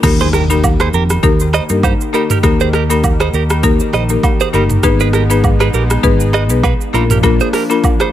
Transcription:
0.03 D#2 D#3 A#3 D#4 G4 A#4, kick, cross-stick, crash, impact, high agogo, shaker
0.20 G#4 C5, shaker
0.33 G4 A#4, cross-stick, shaker
0.50 A#3 D#4 G4 A#4, high agogo, shaker
0.64 kick, low woodblock, shaker
0.80 G#4 C5, cross-stick, high agogo, shaker
0.93 F2 G4 A#4, shaker
1.10 cross-stick, high agogo, shaker
1.23 D#2 A#3 D#4 G4 A#4, kick, shaker
1.40 shaker
1.53 C5 D#5, cross-stick, high agogo, shaker
1.69 G2 A#3 D#4 G4 A#4, shaker
1.83 G4 C5, kick, high agogo, low woodblock, shaker
2.01 shaker
2.13 A#3 D#4 G4 A#4, high agogo, shaker
2.30 G4 A#4, mid tom, shaker
2.43 D#2 A#3 D#4 G4 A#4, kick, cross-stick, high agogo, shaker
2.60 G#4 C5, shaker
2.73 G4 A#4, cross-stick, shaker
2.90 A#3 D#4 G4 A#4, high agogo, shaker
3.04 kick, low woodblock, shaker
3.20 G#4 C5, cross-stick, high agogo, shaker
3.33 D#2 G4 A#4, shaker
3.50 cross-stick, high agogo, shaker
3.63 A#3 D#4 G4 A#4, kick, shaker
3.80 shaker
3.93 A#1 C5 D#5, cross-stick, high agogo, shaker
4.09 A#3 D#4 G4 A#4, shaker
4.23 kick, high agogo, low woodblock, shaker
4.40 G#4 C5, shaker
4.53 G1 A#3 D#4 G4 A#4, high agogo, shaker
4.70 mid tom, shaker
4.83 G#1 G#3 B3 D#4 G#4 B4, kick, cross-stick, high agogo, shaker
5.00 G#4 B4, shaker
5.13 G4 A#4, cross-stick, shaker
5.30 B3 D#4 G#4 B4, high agogo, shaker
5.44 kick, low woodblock, shaker
5.60 G#4 B4, cross-stick, high agogo, shaker
5.73 A#1 G4 A#4, shaker
5.90 cross-stick, high agogo, shaker
6.03 G#1 B3 D#4 G#4 B4, kick, shaker
6.20 shaker
6.33 B4 D#5, cross-stick, high agogo, shaker
6.50 B1 B3 D#4 G#4 B4, shaker
6.63 G#4 B4, kick, high agogo, low woodblock, shaker
6.81 shaker
6.93 A#1 F3 A#3 D4 F4 A#4, high agogo, shaker
7.10 G4 A#4, mid tom, shaker
7.23 A#3 D4 F4 A#4, kick, cross-stick, high agogo, shaker
7.40 G#4 C5, shaker
7.53 G4 A#4, cross-stick, open hi-hat, shaker
7.70 A#3 D4 F4 A#4, high agogo, shaker
7.84 kick, low woodblock, shaker
8.00 G#4 C5, cross-stick, high agogo, shaker

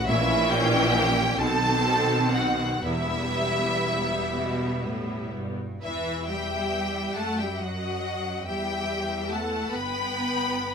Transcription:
0.07 A#1 A#2 E3 C#4 E4 E5
0.51 G4 G5
1.39 B1 B2 D#3 C4 A4 A5
2.33 F#4 F#5
2.83 E1 E2 G3 B3 E4 E5
4.36 B2
4.85 A2
5.35 G2
5.82 E2 E3 E4 B4 E5
6.26 G3 G4 E5 G5
7.16 F#2 A3 A4 F#5 A5
7.38 G3 G4 E5 G5
7.60 F#3 F#4 D#5 F#5
8.46 E2 G3 G4 E5 G5
9.31 A3 A4 F#5 A5
9.72 G1 B3 B4 G5 B5

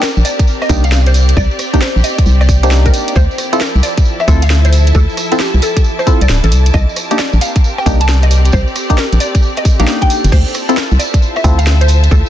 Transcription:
Already playing: C4 G4 A#4 D5 A5
0.03 A#4, snare, tambourine
0.17 A#1, tambourine
0.25 D5, open hi-hat, tambourine
0.39 kick, closed hi-hat, tambourine
0.47 tambourine
0.62 D#5, cross-stick, tambourine
0.69 C2 A#3 D4 D#4 G4, kick, open hi-hat, tambourine
0.84 F5, closed hi-hat, tambourine
0.92 snare, tambourine
1.06 C5, closed hi-hat, tambourine
1.14 open hi-hat, tambourine
1.28 closed hi-hat, tambourine
1.37 C2 C5 D5, kick, tambourine
1.51 tambourine
1.59 cross-stick, open hi-hat, tambourine
1.73 A#3 D4 D#4 G4, kick, closed hi-hat, tambourine
1.82 C5, snare, tambourine
1.96 A#1, tambourine
2.04 D#5, open hi-hat, tambourine
2.18 kick, closed hi-hat, tambourine
2.26 C2, tambourine
2.41 D5, cross-stick, tambourine
2.49 kick, cross-stick, open hi-hat, tambourine
2.63 A#3 D4 D#4 G4 C5, closed hi-hat, tambourine
2.71 snare, tambourine
2.86 A#4, kick, closed hi-hat, tambourine
2.94 open hi-hat, tambourine
3.08 closed hi-hat, tambourine
3.15 D2 F3 E4 A4 C5, kick, tambourine
3.31 tambourine
3.38 cross-stick, open hi-hat, tambourine
3.53 C4 E4 F4 A4, closed hi-hat, tambourine
3.61 A#4, snare, tambourine
3.75 C2 A5, tambourine
3.83 D5, open hi-hat, tambourine
3.98 kick, closed hi-hat, tambourine
4.05 tambourine
4.20 E5, cross-stick, tambourine
4.28 D2 C4 E4 F4 A4, kick, open hi-hat, tambourine
4.42 E5 F5, closed hi-hat, tambourine
4.50 snare, tambourine
4.65 C5, closed hi-hat, tambourine
4.73 open hi-hat, tambourine
4.87 closed hi-hat, tambourine
4.95 D2 A4 D6, kick, tambourine
5.10 tambourine
5.17 cross-stick, open hi-hat, tambourine
5.32 C4 E4 F4 A4, closed hi-hat, tambourine
5.40 G4, snare, tambourine
5.54 C2, tambourine
5.62 A4, open hi-hat, tambourine
5.77 kick, closed hi-hat, tambourine
5.84 tambourine
5.99 C5, cross-stick, tambourine
6.07 C4 E4 F4 A4, kick, open hi-hat, tambourine
6.21 C2 D5, closed hi-hat, tambourine
6.29 D1, snare, tambourine
6.43 A1 A4, closed hi-hat, tambourine
6.52 C2, open hi-hat, tambourine
6.66 closed hi-hat, tambourine
6.74 C2 C4 G4 A#4 D#5, kick, tambourine
6.89 tambourine
6.96 cross-stick, open hi-hat, tambourine
7.11 A#3 D4 D#4 G4, closed hi-hat, tambourine
7.18 D5, snare, tambourine
7.33 A#1, tambourine
7.41 G4 F5, open hi-hat, tambourine
7.56 kick, closed hi-hat, tambourine
7.64 tambourine
7.78 G5, cross-stick, tambourine
7.86 C2 A#3 D4 D#4 G4, kick, open hi-hat, tambourine
7.95 D5
8.00 A5, closed hi-hat, tambourine
8.09 snare, tambourine
8.22 D#5, closed hi-hat, tambourine
8.31 open hi-hat, tambourine
8.45 closed hi-hat, tambourine
8.52 C2 A4 C5, kick, tambourine
8.68 tambourine
8.76 cross-stick, open hi-hat, tambourine
8.90 A#3 D4 D#4 G4, kick, closed hi-hat, tambourine
8.98 A#4, snare, tambourine
9.12 A#1, closed hi-hat, tambourine
9.20 D5, open hi-hat, tambourine
9.35 kick, closed hi-hat, tambourine
9.42 tambourine
9.56 D#5, cross-stick, closed hi-hat, tambourine
9.65 kick, cross-stick, open hi-hat, tambourine
9.79 A#1 A#3 D4 D#4 G4 F5, closed hi-hat, tambourine
9.87 snare, tambourine
10.02 G5, kick, closed hi-hat, tambourine
10.10 open hi-hat, tambourine
10.24 G1, closed hi-hat, tambourine
10.32 D2 E4 F4 C5, kick, tambourine, crash
10.47 A5, tambourine
10.54 cross-stick, open hi-hat, tambourine
10.69 C4 E4 F4 A4, closed hi-hat, tambourine
10.74 A#4 E5, snare, tambourine
10.91 C2, tambourine
10.99 D5, open hi-hat, tambourine
11.14 kick, closed hi-hat, tambourine
11.22 tambourine
11.36 E5, cross-stick, tambourine
11.44 D2 C4 E4 F4 A4, kick, open hi-hat, tambourine
11.58 F5, closed hi-hat, tambourine
11.67 snare, tambourine
11.81 C5, closed hi-hat, tambourine
11.88 open hi-hat, tambourine
12.04 closed hi-hat, tambourine
12.11 D2 A4, kick, tambourine

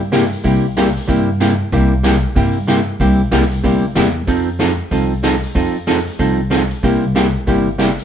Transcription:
Already playing: G2
0.12 C3 G3 A#3 E4 G4, snare, closed hi-hat
0.32 open hi-hat
0.44 C2 C3 G3 A#3 E4 G4, kick, open hi-hat
0.77 C3 G3 A#3 E4 G4, snare, closed hi-hat
0.97 open hi-hat
1.08 G2 C3 G3 A#3 E4 G4, kick, open hi-hat
1.40 C3 G3 A#3 E4 G4, snare, closed hi-hat
1.72 C2 C3 G3 A#3 E4 G4, kick, open hi-hat
2.03 C3 G3 A#3 E4 G4, snare, closed hi-hat
2.36 G2 C3 G3 A#3 E4 G4, kick, open hi-hat
2.67 C3 G3 A#3 E4 G4, snare, closed hi-hat
3.00 C2 C3 G3 A#3 E4 G4, kick, open hi-hat
3.31 C2 C3 G3 A#3 E4 G4, snare, closed hi-hat
3.51 open hi-hat
3.63 D2 C3 G3 A#3 E4 G4, kick, open hi-hat
3.95 E2 C3 G3 A#3 E4 G4, snare, closed hi-hat
4.27 F2 F3 C4 D#4 A4, kick, open hi-hat
4.59 F3 C4 D#4 A4, snare, closed hi-hat
4.91 C2 F3 C4 D#4 A4, kick, open hi-hat
5.23 F3 C4 D#4 A4, snare, closed hi-hat
5.43 open hi-hat
5.55 F2 F3 C4 D#4 A4, kick, open hi-hat
5.87 F3 C4 D#4 A4, snare, closed hi-hat
6.07 open hi-hat
6.19 C2 F3 C4 D#4 A4, kick, open hi-hat
6.50 F3 C4 D#4 A4, snare, closed hi-hat
6.71 open hi-hat
6.83 C2 C3 G3 A#3 E4 G4, kick, open hi-hat
7.15 C3 G3 A#3 E4 G4, snare, closed hi-hat
7.47 G1 C3 G3 A#3 E4 G4, kick, open hi-hat
7.78 C3 G3 A#3 E4 G4, snare, closed hi-hat
7.99 open hi-hat

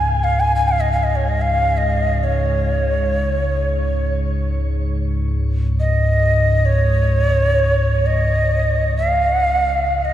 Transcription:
Already playing: C#2 G#2 G#5
0.24 F5
0.40 G#5
0.56 G#5
0.68 F5
0.80 D#5
0.92 F5
1.04 D#5
1.16 C#5
1.29 D#5
1.41 F5
1.77 D#5
2.24 C#5
5.80 D#5
6.65 C#5
8.06 D#5
8.97 F5
10.05 D#5

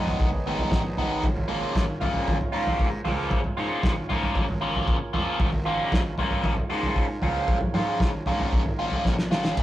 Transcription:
Already playing: F2 D#3 G#3 B3 D#4 G#4 B4 C#5
0.07 floor tom
0.20 G#1, kick, floor tom
0.33 floor tom
0.47 D#3 G#3 B3 D#4
0.59 floor tom
0.71 A#1, kick, snare, mid tom
0.97 G#1 D#3 G#3 B3 D#4, floor tom
1.23 G#1 A#3 C#4 F4 A#4, kick, floor tom
1.37 floor tom
1.48 C#3 F3 A#3 F4
1.75 G#1, kick, snare, floor tom
2.01 C#3 F3 A#3 F4, floor tom
2.14 floor tom
2.27 G#1, kick, floor tom
2.41 floor tom
2.53 G#2 C#3 F3 A#3 F4
2.67 floor tom
2.79 G#2, kick
3.05 C#2 C#3 F3 A#3 F4, floor tom
3.30 kick, floor tom
3.44 floor tom
3.57 G#2 C#3 F3 A#3 F4
3.83 G#1, kick, snare, floor tom
4.09 G#2 C#3 F3 A#3 F4, floor tom
4.23 floor tom
4.35 G#1, kick, floor tom
4.49 floor tom
4.61 C#3 F3 A#3 F4
4.75 floor tom
4.88 kick
5.13 F2 C#3 F3 A#3 F4, floor tom
5.40 G#1, kick, floor tom
5.53 floor tom
5.66 C#3 F3 A#3 F4
5.92 G#1, kick, snare, floor tom
6.18 C#3 F3 A#3 F4, floor tom
6.31 floor tom
6.43 G#1, kick, floor tom
6.57 floor tom
6.70 G#2 C#3 F3 A#3 F4
6.83 floor tom
6.96 G#2, kick
7.22 C#2 C#3 F3 A#3 F4, floor tom
7.48 kick, floor tom
7.61 floor tom, mid tom
7.74 G#2 C#3 F3 A#3 F4, mid tom
8.00 G#1, kick, snare, floor tom
8.26 G#2 C#3 F3 A#3 F4, floor tom
8.40 floor tom
8.52 G#1, kick, floor tom
8.66 floor tom
8.79 C#3 F3 A#3 F4
8.91 floor tom
9.05 A#1, kick, snare
9.19 snare
9.31 G#1 C#3 F3 A#3 F4, snare
9.45 snare
9.55 G#1 G#2 B3 D#4 G#4 B4 D#5, kick, floor tom, crash

